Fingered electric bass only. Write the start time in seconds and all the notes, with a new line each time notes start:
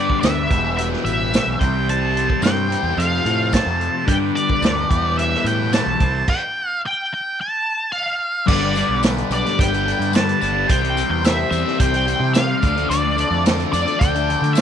0.23 D2
0.50 E1
1.05 A1
1.46 B1
1.60 C2
2.42 G2
2.83 E2
2.97 F2
3.25 A2
3.66 F2
4.07 G2
4.62 D2
4.90 E2
5.44 A2
5.86 B1
6.00 C2
8.48 G1
8.89 B1
9.30 B1
9.59 G1
9.99 G2
10.42 G1
10.69 C2
11.10 E2
11.51 E2
11.80 C2
12.20 C3
12.63 D2
12.90 D2
13.30 F2
13.73 F2
14.01 D2
14.41 D3